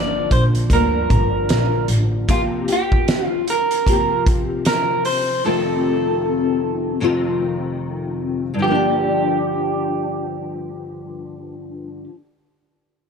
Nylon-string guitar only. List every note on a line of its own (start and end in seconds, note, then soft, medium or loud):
0.00 0.70 D3 medium
0.00 0.72 F3 medium
0.00 0.72 A#3 medium
0.00 0.71 D4 medium
0.70 2.28 G2 medium
0.70 2.28 D3 medium
0.70 2.29 F3 medium
0.70 2.29 A#3 medium
0.70 2.30 D4 medium
2.28 2.68 C3 medium
2.28 2.68 F3 medium
2.28 2.68 A#3 loud
2.28 2.69 F4 loud
2.28 2.67 G4 medium
2.68 3.87 A#3 soft
2.68 3.88 F4 soft
2.68 3.87 G4 medium
3.87 5.43 C3 medium
3.87 5.45 F3 medium
3.87 5.45 A#3 medium
3.87 5.46 F4 medium
3.87 5.46 G4 medium
5.44 6.99 F2 medium
5.44 7.00 C3 loud
5.44 7.01 D#3 medium
5.44 7.01 A3 medium
5.44 7.02 C4 medium
5.44 7.03 F4 medium
7.00 8.53 F2 medium
7.00 8.58 C3 medium
7.00 8.60 D#3 medium
7.00 8.60 A3 medium
7.00 8.61 C4 medium
7.00 8.74 F4 loud
8.54 12.04 G2 medium
8.59 12.09 D3 medium
8.63 12.13 F3 medium
8.68 12.18 A#3 medium
8.68 12.21 D4 loud
8.75 12.25 G4 medium